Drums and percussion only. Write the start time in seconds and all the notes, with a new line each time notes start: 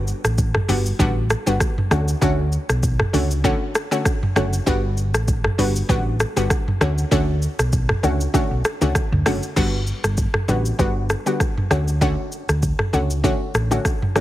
0.07 shaker
0.25 cross-stick, shaker
0.38 kick, shaker
0.55 cross-stick, mid tom
0.69 open hi-hat, shaker
0.86 shaker
0.99 kick, shaker
1.30 cross-stick, shaker
1.47 shaker
1.60 kick, cross-stick, shaker
1.78 mid tom
1.91 cross-stick, shaker
2.08 shaker
2.22 kick, shaker
2.52 shaker
2.69 cross-stick, shaker
2.83 kick, shaker
3.00 cross-stick, mid tom
3.14 open hi-hat, shaker
3.31 shaker
3.44 kick, shaker
3.75 cross-stick, shaker
3.92 shaker
4.05 kick, cross-stick, shaker
4.23 mid tom
4.36 cross-stick, shaker
4.53 shaker
4.67 kick, shaker
4.97 shaker
5.14 cross-stick, shaker
5.28 kick, shaker
5.44 cross-stick, mid tom
5.59 open hi-hat, shaker
5.76 shaker
5.89 kick, shaker
6.20 cross-stick, shaker
6.37 shaker
6.50 kick, cross-stick, shaker
6.68 mid tom
6.81 cross-stick, shaker
6.98 shaker
7.12 kick, shaker
7.42 shaker
7.59 cross-stick, shaker
7.73 kick, shaker
7.89 cross-stick, mid tom
8.04 shaker
8.21 shaker
8.34 kick, shaker
8.65 cross-stick, shaker
8.82 shaker
8.95 kick, cross-stick, shaker
9.13 mid tom
9.26 cross-stick, open hi-hat, shaker
9.43 shaker
9.57 kick, crash, shaker
9.87 shaker
10.04 cross-stick, shaker
10.17 kick, shaker
10.34 cross-stick, mid tom
10.48 shaker
10.65 shaker
10.79 kick, shaker
11.10 cross-stick, shaker
11.27 shaker
11.40 kick, cross-stick, shaker
11.57 mid tom
11.71 cross-stick, shaker
11.88 shaker
12.01 kick, shaker
12.32 shaker
12.49 cross-stick, shaker
12.62 kick, shaker
12.79 cross-stick, mid tom
12.94 shaker
13.10 shaker
13.24 kick, shaker
13.54 cross-stick, shaker
13.71 shaker
13.85 kick, cross-stick, shaker
14.02 mid tom
14.16 cross-stick, shaker